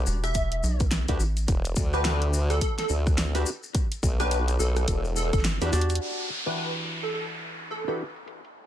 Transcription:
Already playing: D4 F#4 G4 B4
0.07 E1, maracas
0.24 E5, cross-stick, closed hi-hat, maracas
0.34 kick, closed hi-hat, maracas
0.52 closed hi-hat
0.63 B1, maracas
0.80 kick, closed hi-hat, maracas
0.91 snare, closed hi-hat, maracas
1.08 D2 D4 F#4 G4 B4, kick, closed hi-hat, maracas
1.20 A1, maracas
1.37 closed hi-hat, maracas
1.48 E1, kick, closed hi-hat, maracas
1.65 closed hi-hat, maracas
1.76 D2, kick, maracas
1.93 D4 F#4 G4 B4, cross-stick, maracas
2.05 B4, snare, closed hi-hat, maracas
2.22 closed hi-hat
2.33 maracas
2.50 A4, cross-stick, closed hi-hat, maracas
2.61 A4, kick, closed hi-hat, maracas
2.78 A4, snare, closed hi-hat
2.89 D2, maracas
3.07 kick, cross-stick, maracas
3.18 snare, closed hi-hat, maracas
3.35 D4 F#4 G4 B4, closed hi-hat, maracas
3.46 maracas
3.63 maracas
3.75 kick, closed hi-hat, maracas
3.92 closed hi-hat, maracas
4.03 B1, kick, maracas
4.20 D4 F#4 G4 B4, cross-stick, closed hi-hat, maracas
4.31 B4, closed hi-hat, maracas
4.48 closed hi-hat, maracas
4.59 B1 A4, maracas
4.76 cross-stick, closed hi-hat, maracas
4.88 E1, kick, closed hi-hat, maracas
5.04 maracas
5.16 A4, maracas
5.33 G1 A4, kick, closed hi-hat, maracas
5.39 snare
5.45 snare, closed hi-hat, maracas
5.61 E2 D4 F#4 G4 B4, closed hi-hat, maracas
5.73 E2 D4 F#4 G4 D5, closed hi-hat, maracas
5.81 closed hi-hat
5.90 closed hi-hat, maracas
5.95 closed hi-hat
6.01 downlifter
6.46 E3 D4 F#4 G4 B4
6.58 B4
7.03 A4
7.14 A4, closed hi-hat
7.71 A4, closed hi-hat
7.88 E3 D4 F#4 G4 A4 B4, closed hi-hat
8.16 closed hi-hat
8.28 closed hi-hat
8.45 closed hi-hat

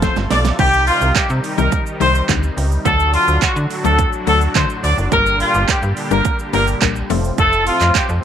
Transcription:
Already playing: C3 F3 A3 F4 A4
0.02 F3 A3 C4 F4 A4 C5, kick, snare, closed hi-hat, shaker
0.16 G1, snare, shaker
0.31 B1 D5, snare, open hi-hat, shaker
0.45 snare, shaker
0.59 C2 D#3 G3 C4 D#4 G4, kick, crash
0.73 shaker
0.87 F4, open hi-hat, shaker
1.01 C2, shaker
1.15 C3 G4, kick, clap, closed hi-hat, shaker
1.30 C3, shaker
1.44 open hi-hat, shaker
1.58 C2 D#3 G3 C4 D#4 G4 A#4, shaker
1.72 kick, closed hi-hat, shaker
1.87 shaker
2.00 C2 D#3 G3 C4 D#4 G4 C5, open hi-hat, shaker
2.15 shaker
2.28 D2 D#3 G3 C4 D#4 G4, kick, clap, closed hi-hat, shaker
2.43 shaker
2.57 C#2, open hi-hat, shaker
2.72 shaker
2.85 D2 A2 D3 F#3 A3 D4 F#4 A4, kick, closed hi-hat, shaker
3.00 shaker
3.14 F4, open hi-hat, shaker
3.28 D2, shaker
3.42 D3 F#4, kick, clap, closed hi-hat, shaker
3.56 D3, shaker
3.70 open hi-hat, shaker
3.84 D2 F#3 A3 D4 F#4 A4, shaker
3.99 kick, closed hi-hat, shaker
4.13 shaker
4.27 D2 F#3 A3 D4 F#4 A4, open hi-hat, shaker
4.41 shaker
4.55 D3 F#3 A3 D4 F#4 C5, kick, clap, closed hi-hat, shaker
4.70 shaker
4.84 D2 D5, open hi-hat, shaker
4.98 F#1, shaker
5.12 G1 A#2 D3 G3 A#3 D4 G4 A#4, kick, closed hi-hat, shaker
5.26 shaker
5.40 F4, open hi-hat, shaker
5.54 G1, shaker
5.68 G4, kick, clap, closed hi-hat, shaker
5.83 G2, shaker
5.97 open hi-hat, shaker
6.11 G1 G3 A#3 D4 G4 A#4, shaker
6.25 kick, closed hi-hat, shaker
6.39 shaker
6.53 G1 G3 A#3 D4 G4 A#4, open hi-hat, shaker
6.67 shaker
6.82 A#1 G3 A#3 D4 G4 A#4, kick, clap, closed hi-hat, shaker
6.96 shaker
7.10 F1 A2 C3 F3 A3 C4 F4 A4, open hi-hat, shaker
7.24 shaker
7.38 F1 A4, kick, closed hi-hat, shaker
7.53 shaker
7.67 F4, open hi-hat, shaker
7.81 F2, clap, shaker
7.95 G4, kick, clap, closed hi-hat, shaker
8.09 F2, shaker

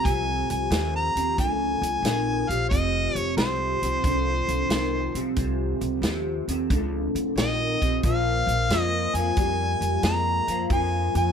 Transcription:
0.05 C2 F2 C3 G#5, kick, closed hi-hat
0.50 C2 G#5, closed hi-hat
0.70 D#2 F2 C3, snare, closed hi-hat
0.96 A#5
1.16 D#2 F2 C3, closed hi-hat
1.38 C#2 F2 D3 G#5, kick, closed hi-hat
1.82 C#2, closed hi-hat
2.02 A#1 F2 D#3, snare, closed hi-hat
2.49 A#1 F2 C3 F5, closed hi-hat
2.69 F1 F2 C3 D#5, kick, closed hi-hat
3.15 F1 C#5, closed hi-hat
3.37 C2 F2 C3 C5, snare, closed hi-hat
3.82 C2 F2 C3, closed hi-hat
4.04 C2 F2 D3, kick, closed hi-hat
4.48 C2, closed hi-hat
4.69 C2 F2 D#3, snare, closed hi-hat
5.15 C2 F2 C3, closed hi-hat
5.36 C2 F2 C3, kick, closed hi-hat
5.81 C2, closed hi-hat
6.02 D#2 F2 C3, snare, closed hi-hat
6.48 D#2 F2 C3, closed hi-hat
6.70 C#2 F2 D3, kick, closed hi-hat
7.15 C#2, closed hi-hat
7.36 A#1 F2 D#3 D#5, snare, closed hi-hat
7.82 A#1 F2 C3, kick, closed hi-hat
8.03 A#1 A#2 F3 F5, kick, closed hi-hat
8.47 A#1, closed hi-hat
8.69 F2 A#2 F3, snare, closed hi-hat
8.80 D#5
9.14 F2 A#2 F3 G#5, closed hi-hat
9.37 F2 A#2 G3, kick, closed hi-hat
9.81 F2, closed hi-hat
10.03 F2 A#2 G#3 A#5, snare, closed hi-hat
10.48 F2 A#2 F3, closed hi-hat
10.70 F2 A#2 F3 G#5, kick, closed hi-hat
11.15 F2 G#5, closed hi-hat

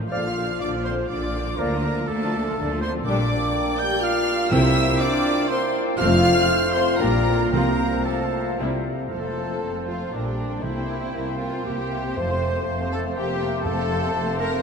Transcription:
0.00 F3 F4
0.10 A#1 A#2 D3 F3 D4 F4 D5 F5 F6
0.25 F3 F4
0.38 D3 D4
0.50 F3 F4
0.60 A#1 A#2 D3 D4 D5 D6
0.74 F3 F4
0.84 D3 C4 D4 C5 C6
0.98 F3 F4
1.08 A#1 A#2 D3 D4 D5 D6
1.22 F3 F4
1.34 D3 D4
1.46 F3 F4
1.58 D2 D3 F3 A#3 D4 A#4 D5 F5 A#5
1.71 F3 F4
1.83 A#3 D4
1.97 F3 F4
2.08 D2 D3 A3 A#3 D4 A4 A5
2.22 F3 F4
2.33 A#3 D4
2.46 F3 F4
2.57 D2 D3 A#3 D4
2.69 F3 F4
2.81 A#3 C4 D4 C5 C6
2.94 F3 F4
3.05 A#1 A#2 G3 A#3 D4 D5 G5 D6
3.78 G4 G5 G6
4.01 F4 F5 F6
4.51 C2 C3 A#3 C4 E4 C5 E5 G5 E6
5.00 D4 D5 D6
5.48 A#3 C4 C5 G5 C6
5.98 F1 F2 A3 C4 F4 C5 F5 F6
6.73 C4 C5 C6
6.99 A#1 A#2 G3 A#3 D4 A#4 D5 G5 A#5
7.52 C2 C3 F3 A#3 C4 F4 A#4 C5 F5 A#5
8.06 A3 C4 A4 C5 F5 A5
8.59 C2 C3 G3 C4 E4 C5 E5
9.10 F1 F2 F3 A3 C4 A4 C5 F5
9.25 F3 F4 C5
9.38 A3 A4 F5
9.50 F3 F4 C5
9.62 F1 F2 A3 A4 F5
9.75 F3 F4 C5
9.88 A3 F4 A4 F5
10.01 F3 F4 C5
10.13 A#1 A#2 G3 A#3 D4 A#4 D5 G5 A#5
10.26 G3 G4 G5
10.38 A#3 A#4 A#5
10.51 G3 G4 G5
10.63 C2 C3 A#3 C4 E4 A#4 C5 E5
10.76 C4 C5 G5
10.89 A#3 A#4 E5
11.01 C4 C5 G5
11.14 C2 C3 A#3 A#4 E5
11.27 C4 C5 G5
11.39 A#3 F4 A#4 E5
11.51 C4 C5 G5
11.64 C2 C3 A#3 G4 A#4 E5
11.77 C4 C5 G5
11.91 A#3 A#4 E5
12.04 C4 C5 G5
12.16 F1 F2 A3 A4 C5 F5 A5
12.29 C4 C5 F5
12.43 A3 A4 A5
12.55 C4 C5 F5
12.67 F1 F2 A3 A4 A5
12.80 C4 C5 F5
12.92 A3 A4 A5
13.05 C4 C5 F5
13.15 F1 F2 A#3 G4 A#4 E5 G5
13.29 C4 C5 E5
13.41 A#3 A#4 G5
13.53 C4 C5 E5
13.64 F1 F2 A3 C4 A4 C5 F5 A5
13.78 C4 C5 F5
13.89 A3 A4 A5
14.02 C4 C5 F5
14.13 F1 F2 A3 A4 A5
14.26 C4 C5 F5
14.38 A3 A4 A#4 A5
14.50 C4 C5 F5

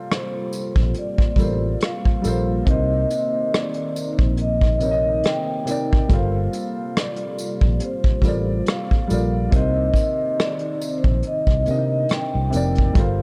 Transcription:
Already playing: C3 G3 A#3 F4 A4 A#4 C5 D5 F5 G5
0.11 C5, cross-stick, closed hi-hat
0.53 closed hi-hat, tambourine
0.76 A#1, kick
0.94 closed hi-hat
0.99 D5
1.18 kick, cross-stick
1.36 A1 G3 F4 A4, kick, closed hi-hat, tambourine
1.40 A#4 C5
1.80 F5, cross-stick, closed hi-hat
2.05 kick
2.22 A#1 G3 F4 A4, closed hi-hat, tambourine
2.26 A#4 C5
2.65 C2 C3 D#3 A#3 C4 D#4, kick, closed hi-hat
2.70 C5 D#5
3.10 closed hi-hat, tambourine
3.54 D5, cross-stick, closed hi-hat
3.74 closed hi-hat
3.96 closed hi-hat, tambourine
4.13 C5
4.19 A#1, kick
4.37 closed hi-hat
4.42 D#5
4.61 kick
4.79 C3 A#3 D#4, closed hi-hat, tambourine
4.85 C#5
4.91 D#5
5.24 G5, cross-stick, closed hi-hat
5.65 C3 A#3 D#4, closed hi-hat, tambourine
5.71 D5
5.93 kick
6.08 G1 C3 G3 F4 A4, kick, closed hi-hat
6.12 A#4 C5 F5
6.53 closed hi-hat, tambourine
6.97 D5, cross-stick, closed hi-hat
7.16 closed hi-hat
7.38 closed hi-hat, tambourine
7.61 A#1, kick
7.80 closed hi-hat
7.84 C5
8.04 kick
8.22 A1 G3 F4 A4, kick, closed hi-hat, tambourine
8.26 A#4 D5
8.66 F5, cross-stick, closed hi-hat
8.91 kick
9.07 A#1 G3 F4 A4, closed hi-hat, tambourine
9.12 A#4 D5
9.51 C2 C3 D#3 A#3 C4 D#4, kick, closed hi-hat
9.55 C5 D#5
9.94 kick, closed hi-hat, tambourine
10.40 D5, cross-stick, closed hi-hat
10.59 closed hi-hat
10.81 closed hi-hat, tambourine
10.98 C5
11.04 A#1, kick
11.23 closed hi-hat
11.27 D#5
11.47 C2, kick, cross-stick
11.65 C3 A#3, closed hi-hat, tambourine
11.69 D4 D#5
11.75 D#4
12.09 G5, cross-stick, closed hi-hat
12.35 C2
12.50 F1 C3 A#3 D#4, closed hi-hat, tambourine
12.56 D5
12.75 kick, closed hi-hat
12.93 G1 G3 F4 A4, kick, closed hi-hat
12.98 A#4 C5 F5

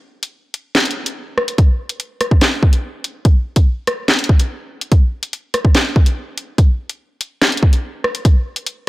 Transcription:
0.23 closed hi-hat
0.54 closed hi-hat
0.75 snare, clap, closed hi-hat
0.80 closed hi-hat
0.85 closed hi-hat
0.91 closed hi-hat
1.06 closed hi-hat
1.38 cross-stick
1.48 closed hi-hat
1.58 kick, closed hi-hat
1.89 closed hi-hat
2.00 closed hi-hat
2.21 cross-stick, closed hi-hat
2.31 kick
2.41 snare, clap, closed hi-hat
2.63 kick
2.73 closed hi-hat
3.04 closed hi-hat
3.25 kick, closed hi-hat
3.56 kick, closed hi-hat
3.87 cross-stick, closed hi-hat
4.08 snare, clap, closed hi-hat
4.14 closed hi-hat
4.19 closed hi-hat
4.24 closed hi-hat
4.29 kick
4.39 closed hi-hat
4.81 closed hi-hat
4.92 kick, closed hi-hat
5.23 closed hi-hat
5.33 closed hi-hat
5.54 cross-stick, closed hi-hat
5.65 kick
5.75 snare, clap, closed hi-hat
5.96 kick
6.06 closed hi-hat
6.38 closed hi-hat
6.58 kick, closed hi-hat
6.90 closed hi-hat
7.21 closed hi-hat
7.42 snare, clap, closed hi-hat
7.47 closed hi-hat
7.52 closed hi-hat
7.57 closed hi-hat
7.63 kick
7.73 closed hi-hat
8.04 cross-stick
8.15 closed hi-hat
8.25 kick, closed hi-hat
8.56 closed hi-hat
8.66 closed hi-hat

